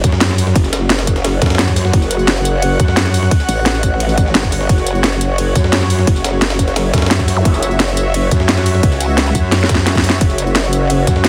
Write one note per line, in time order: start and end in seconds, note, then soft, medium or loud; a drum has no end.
0.00 0.54 F#2 medium
0.00 11.29 F#4 medium
0.00 11.29 C#5 medium
0.00 5.16 F#5 medium
0.00 kick loud
0.00 closed hi-hat medium
0.00 closed hi-hat loud
0.00 tambourine medium
0.12 snare medium
0.21 snare loud
0.21 closed hi-hat medium
0.21 ride medium
0.30 snare soft
0.30 tambourine soft
0.38 closed hi-hat medium
0.38 open hi-hat medium
0.38 tambourine medium
0.47 snare soft
0.55 1.40 F#1 loud
0.55 kick loud
0.55 closed hi-hat medium
0.55 ride medium
0.64 snare soft
0.64 tambourine soft
0.73 snare loud
0.73 closed hi-hat medium
0.73 closed hi-hat loud
0.73 tambourine medium
0.90 snare medium
0.90 snare loud
0.90 closed hi-hat medium
0.90 ride medium
0.99 snare loud
0.99 closed hi-hat medium
0.99 tambourine soft
1.07 kick medium
1.07 closed hi-hat loud
1.07 tambourine medium
1.16 snare medium
1.16 closed hi-hat medium
1.24 snare loud
1.24 closed hi-hat medium
1.24 ride medium
1.42 1.92 F#2 medium
1.42 kick loud
1.42 snare medium
1.42 closed hi-hat medium
1.42 closed hi-hat loud
1.42 tambourine medium
1.46 snare medium
1.46 closed hi-hat medium
1.50 snare medium
1.50 closed hi-hat medium
1.55 snare medium
1.55 closed hi-hat medium
1.59 snare loud
1.59 closed hi-hat medium
1.59 ride medium
1.68 kick medium
1.68 tambourine soft
1.76 snare medium
1.76 closed hi-hat medium
1.76 open hi-hat medium
1.76 tambourine medium
1.85 snare soft
1.93 2.78 F#1 loud
1.93 kick loud
1.93 closed hi-hat medium
1.93 ride medium
2.02 snare soft
2.02 tambourine soft
2.11 closed hi-hat medium
2.11 closed hi-hat loud
2.11 tambourine medium
2.19 closed hi-hat soft
2.28 snare loud
2.28 closed hi-hat medium
2.28 ride medium
2.37 tambourine soft
2.45 closed hi-hat medium
2.45 closed hi-hat loud
2.45 tambourine medium
2.62 closed hi-hat medium
2.62 ride medium
2.80 3.30 F#2 loud
2.80 kick loud
2.80 closed hi-hat medium
2.80 tambourine medium
2.88 snare medium
2.97 snare loud
2.97 closed hi-hat medium
2.97 closed hi-hat loud
2.97 ride medium
3.05 snare soft
3.05 tambourine soft
3.14 closed hi-hat medium
3.14 open hi-hat medium
3.14 tambourine medium
3.23 snare soft
3.31 kick loud
3.31 closed hi-hat medium
3.31 ride medium
3.40 snare soft
3.40 tambourine soft
3.49 4.33 A1 loud
3.49 closed hi-hat loud
3.49 open hi-hat medium
3.49 tambourine medium
3.66 snare loud
3.66 closed hi-hat medium
3.66 ride medium
3.74 tambourine soft
3.83 kick medium
3.83 closed hi-hat medium
3.83 tambourine medium
4.00 closed hi-hat medium
4.00 ride medium
4.09 closed hi-hat soft
4.09 tambourine soft
4.18 kick loud
4.18 closed hi-hat medium
4.18 tambourine medium
4.26 snare soft
4.35 4.68 G1 medium
4.35 snare loud
4.35 closed hi-hat medium
4.35 ride medium
4.43 kick medium
4.43 tambourine soft
4.52 snare medium
4.52 closed hi-hat medium
4.52 open hi-hat medium
4.52 tambourine medium
4.61 snare soft
4.69 5.54 F#1 loud
4.69 kick loud
4.69 closed hi-hat medium
4.69 ride medium
4.78 snare soft
4.78 tambourine soft
4.87 closed hi-hat medium
4.87 closed hi-hat loud
4.87 tambourine medium
4.95 closed hi-hat soft
5.04 snare loud
5.04 closed hi-hat medium
5.04 ride medium
5.12 10.67 E5 medium
5.12 tambourine soft
5.21 closed hi-hat medium
5.21 tambourine medium
5.38 closed hi-hat medium
5.38 ride medium
5.55 6.06 F#2 loud
5.55 kick loud
5.55 closed hi-hat medium
5.55 tambourine medium
5.64 snare medium
5.73 snare loud
5.73 closed hi-hat medium
5.73 ride medium
5.81 snare soft
5.81 tambourine soft
5.90 closed hi-hat medium
5.90 open hi-hat medium
5.90 tambourine medium
5.99 snare medium
6.07 6.92 F#1 medium
6.07 kick loud
6.07 closed hi-hat medium
6.07 ride medium
6.16 snare soft
6.16 tambourine soft
6.24 snare loud
6.24 closed hi-hat medium
6.24 closed hi-hat loud
6.24 tambourine medium
6.42 snare medium
6.42 snare loud
6.42 closed hi-hat medium
6.42 ride medium
6.50 snare loud
6.50 closed hi-hat medium
6.50 tambourine soft
6.59 kick medium
6.59 closed hi-hat medium
6.59 tambourine medium
6.68 snare medium
6.68 closed hi-hat medium
6.76 snare loud
6.76 closed hi-hat medium
6.76 ride medium
6.93 7.44 F#2 medium
6.93 kick loud
6.93 snare medium
6.93 closed hi-hat medium
6.93 tambourine medium
6.98 snare medium
6.98 closed hi-hat medium
7.02 snare medium
7.02 closed hi-hat medium
7.06 snare medium
7.06 closed hi-hat medium
7.11 snare loud
7.11 closed hi-hat medium
7.11 ride medium
7.19 kick medium
7.19 tambourine soft
7.28 snare medium
7.28 closed hi-hat medium
7.28 open hi-hat medium
7.28 tambourine medium
7.37 snare medium
7.37 zap medium
7.45 8.30 F#1 medium
7.45 kick loud
7.45 closed hi-hat medium
7.45 ride medium
7.54 snare soft
7.54 tambourine soft
7.62 closed hi-hat medium
7.62 closed hi-hat loud
7.62 tambourine medium
7.71 closed hi-hat soft
7.80 snare loud
7.80 closed hi-hat loud
7.80 closed hi-hat medium
7.80 ride medium
7.88 tambourine soft
7.97 closed hi-hat medium
7.97 tambourine medium
8.14 closed hi-hat medium
8.14 ride medium
8.31 8.82 F#2 loud
8.31 kick loud
8.31 closed hi-hat medium
8.31 tambourine medium
8.40 snare medium
8.49 snare loud
8.49 closed hi-hat medium
8.49 ride medium
8.57 snare soft
8.57 tambourine soft
8.66 closed hi-hat medium
8.66 open hi-hat medium
8.66 tambourine medium
8.75 snare soft
8.83 9.34 C#2 loud
8.83 kick loud
8.83 closed hi-hat medium
8.83 ride medium
8.92 snare soft
8.92 tambourine soft
9.00 closed hi-hat loud
9.00 open hi-hat medium
9.00 tambourine medium
9.18 snare loud
9.18 closed hi-hat medium
9.18 ride medium
9.26 tambourine soft
9.35 10.20 F#2 loud
9.35 kick medium
9.35 closed hi-hat medium
9.35 tambourine medium
9.52 snare medium
9.52 snare loud
9.52 closed hi-hat medium
9.52 ride medium
9.61 snare medium
9.61 closed hi-hat soft
9.61 tambourine soft
9.69 kick loud
9.69 snare loud
9.69 closed hi-hat medium
9.69 closed hi-hat loud
9.69 tambourine medium
9.75 snare medium
9.78 snare soft
9.87 snare medium
9.87 snare loud
9.87 closed hi-hat medium
9.87 ride medium
9.95 kick medium
9.95 snare loud
9.95 tambourine soft
10.04 snare medium
10.04 closed hi-hat medium
10.04 open hi-hat medium
10.04 tambourine medium
10.10 snare loud
10.12 snare soft
10.21 11.06 F#1 loud
10.21 11.29 C#3 medium
10.21 11.29 C#4 medium
10.21 11.29 F#4 medium
10.21 11.29 F#5 medium
10.21 kick loud
10.21 closed hi-hat medium
10.21 ride medium
10.30 snare soft
10.30 tambourine soft
10.38 closed hi-hat loud
10.38 closed hi-hat medium
10.38 tambourine medium
10.47 closed hi-hat soft
10.55 snare loud
10.55 closed hi-hat medium
10.55 ride medium
10.64 11.29 F#5 medium
10.64 tambourine soft
10.73 closed hi-hat medium
10.73 closed hi-hat loud
10.73 tambourine medium
10.90 closed hi-hat medium
10.90 ride medium
11.07 11.29 F#2 loud
11.07 kick loud
11.07 closed hi-hat loud
11.07 closed hi-hat medium
11.07 tambourine medium
11.16 snare medium
11.24 snare loud
11.24 closed hi-hat medium
11.24 ride medium